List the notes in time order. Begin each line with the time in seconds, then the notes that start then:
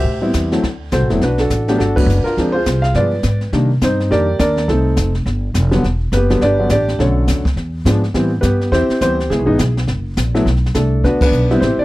Already playing: G4 C5 E5
0.04 A2, brush sweep
0.22 G3 B3 C4 E4
0.33 E2, kick, snare, hi-hat pedal
0.52 F#3 A3 C4 E4, snare
0.63 D2, brush sweep, kick, snare
0.92 C2 F#4 A4 C5, kick, snare, hi-hat pedal
1.01 A1
1.10 F#1 F#3 A3 B3 E4, snare
1.21 B1 D4 F#4 B4, brush sweep, kick, snare
1.38 D4 F#4 A4, snare
1.50 A1, kick, snare, hi-hat pedal
1.68 F#3 A3 B3 D4 G4, snare
1.78 G1 D4 F#4 A4, brush sweep, kick, snare
1.96 F#3 A3 B3 D4 F#4 B4, kick, ride
2.06 F#1, hi-hat pedal
2.24 F4 A#4, muted upright bass stroke, snare
2.37 D2 F3 G#3 C4 D4, brush sweep, kick, snare
2.52 F4 G#4 C5
2.66 C2, kick, snare, hi-hat pedal
2.82 F5, snare
2.94 G2 F3 G#3 B3 F4 B4 D5, brush sweep, kick, snare
3.23 G#2, kick, snare, hi-hat pedal
3.41 snare
3.52 C3 D#3 G3 A#3 D4, brush sweep, kick, snare
3.81 G2 C4 D#4 C5, kick, snare, hi-hat pedal
4.00 snare
4.10 F2 D#3 G3 A#3 D4 G4 A#4 D5, brush sweep, kick, snare
4.39 D#2 D4 A#4 D5, kick, snare, hi-hat pedal
4.57 snare
4.68 C2 A3 C4 D#4 A4, brush sweep, kick, snare
4.97 F1, kick, snare, hi-hat pedal
5.15 snare
5.26 G1, brush sweep, kick, snare
5.54 F1, kick, snare, hi-hat pedal
5.71 D3 F#3 G3 B3, snare
5.83 E1, brush sweep, kick, snare
6.12 F#1 B4, kick, snare, hi-hat pedal
6.17 B3 G4
6.30 D3 F#3 G3 B3, snare
6.41 G1 D4 B4 D5, brush sweep, kick, snare
6.45 G4
6.59 D3 F#3 G3 B3
6.69 A1 D4 G4 D5, kick, snare, hi-hat pedal
6.88 snare
6.99 B1 D3 F#3 A3 C#4 D4 A4 C#5, brush sweep, kick, snare
7.27 D2, kick, snare, hi-hat pedal
7.45 kick, snare
7.56 E2, brush sweep, kick, snare
7.85 G#2 F3 G#3 B3 D4, kick, snare, hi-hat pedal
8.04 snare
8.14 A2 E3 G3 B3 C4, brush sweep, kick, snare
8.41 G2 B3 G4 B4, kick, snare, hi-hat pedal
8.61 snare
8.72 E2 C4 E4 G4 C5, brush sweep, kick, snare
8.89 muted upright bass stroke, snare
9.01 D2 E3 G3 B3 C4 G4 C5, kick, snare, hi-hat pedal
9.20 snare
9.30 C#2 G#3 B3 E4 G#4, brush sweep, kick, snare
9.39 B1
9.46 G#1 E3 G#3 B3 D#4
9.59 B1, kick, snare, hi-hat pedal
9.77 snare
9.87 F#1, brush sweep, kick, snare
10.17 A#1, kick, snare, hi-hat pedal
10.35 F#3 A3 B3 E4, snare
10.46 B1, brush sweep, kick, snare
10.56 snare
10.66 snare
10.75 C2 A3 D4 A4, kick, snare, hi-hat pedal
11.04 D2 B3 D4 F#4 B4, brush sweep, kick, snare
11.21 B3 D4 B4, kick, crash
11.31 B1, hi-hat pedal
11.51 G3 B3 C4 E4, snare
11.60 A1 C4 E4 G4 C5, brush sweep, kick, snare
11.77 D4 D5, muted upright bass stroke